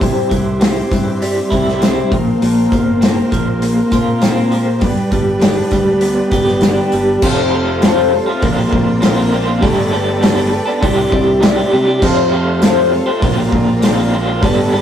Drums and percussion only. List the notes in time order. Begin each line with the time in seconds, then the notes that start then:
0.01 kick, open hi-hat, tambourine
0.31 kick, open hi-hat, tambourine
0.61 snare, open hi-hat, tambourine
0.92 kick, open hi-hat, tambourine
1.22 open hi-hat, tambourine
1.52 kick, open hi-hat, tambourine
1.68 snare
1.82 snare, open hi-hat, tambourine
2.12 kick, open hi-hat
2.42 open hi-hat, tambourine
2.72 kick, open hi-hat, tambourine
3.02 snare, open hi-hat, tambourine
3.32 kick, open hi-hat, tambourine
3.62 open hi-hat, tambourine
3.92 kick, open hi-hat, tambourine
4.22 snare, open hi-hat, tambourine
4.52 open hi-hat
4.81 kick, open hi-hat, tambourine
5.12 kick, open hi-hat, tambourine
5.41 snare, open hi-hat, tambourine
5.71 kick, open hi-hat, tambourine
6.01 open hi-hat, tambourine
6.31 kick, open hi-hat, tambourine
6.48 snare
6.61 snare, open hi-hat, tambourine
6.92 open hi-hat, tambourine
7.22 kick, crash
7.82 snare, open hi-hat, tambourine
8.42 kick, open hi-hat
8.73 kick
9.02 snare, open hi-hat, tambourine
9.62 kick, open hi-hat
10.23 snare, open hi-hat, tambourine
10.82 kick, open hi-hat
11.12 kick
11.42 snare, open hi-hat, tambourine
12.02 kick, crash
12.62 snare, open hi-hat, tambourine
13.22 kick, open hi-hat
13.52 kick
13.82 snare, open hi-hat, tambourine
14.43 kick, open hi-hat